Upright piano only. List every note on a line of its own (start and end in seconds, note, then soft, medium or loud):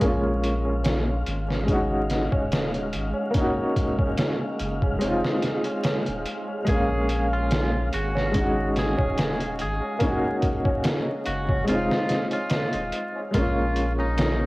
0.00 1.58 G#3 medium
0.00 1.60 A#3 medium
0.05 1.62 C#4 medium
0.05 1.63 F4 medium
1.64 3.25 G#3 medium
1.64 3.27 C#4 medium
1.70 3.28 D#4 medium
1.70 3.30 F#4 medium
3.31 4.92 A#3 medium
3.31 4.93 C#4 medium
3.37 4.95 D#4 medium
3.37 4.97 F#4 medium
4.98 6.59 G#3 medium
4.98 6.61 C4 medium
5.05 6.62 D#4 medium
5.05 6.64 F4 medium
6.65 8.25 G#3 medium
6.65 8.27 A#3 medium
6.71 8.29 C#4 medium
6.71 8.30 F5 medium
8.31 9.92 G#3 medium
8.31 9.94 C#4 medium
8.38 9.95 D#4 medium
8.38 9.97 F#4 medium
9.99 11.59 A#3 medium
9.99 11.61 C#4 medium
10.05 11.62 D#4 medium
10.05 11.64 F#4 medium
11.64 13.25 G#3 medium
11.64 13.27 C4 medium
11.71 13.29 D#4 medium
11.71 13.30 F4 medium
13.31 14.46 G#3 medium
13.31 14.46 A#3 medium
13.38 14.46 C#4 medium
13.38 14.46 F4 medium